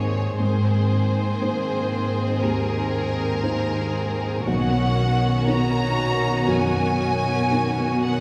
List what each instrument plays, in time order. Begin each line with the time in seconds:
Already playing: felt piano D#2 A#3 D#4 A#4, cello section G#2, viola section D#3 A#3, violin section C4 G#4 C#5
0.39 cello section G#2, felt piano G#2, viola section D#3 A#3, violin section C4 G#4 C5
1.41 felt piano A#3 D#4 C5
2.41 felt piano D#2, violin section A#4
3.43 felt piano A#3 D#4 C5
4.46 felt piano B1, cello section B2, viola section D#3 B3, violin section C#4 F#4 F#5
5.47 felt piano B3 D#4 C#5, violin section A#5
6.48 felt piano F#2, violin section G#5
7.51 felt piano B3 D#4 C#5
8.02 violin section F#5